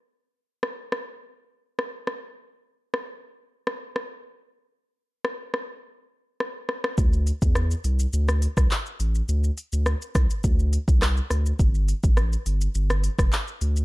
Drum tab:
HH |----------------|----------------|----------------|--x---x---x---x-|
SH |----------------|----------------|----------------|xxxxxxxxxxxxxxxx|
CP |----------------|----------------|----------------|------------x---|
SD |----r-r-----r-r-|----r----r-r----|----r-r-----r-rr|----r----r-r----|
BD |----------------|----------------|----------------|o--o-------o----|

HH |--x---x---x---x-|--x---x---x---x-|
SH |xxxxxxxxxxxxxxxx|xxxxxxxxxxxxxxxx|
CP |------------x---|------------x---|
SD |----r-r-----r-r-|----r----r-r----|
BD |------o-o--o----|o--o-------o----|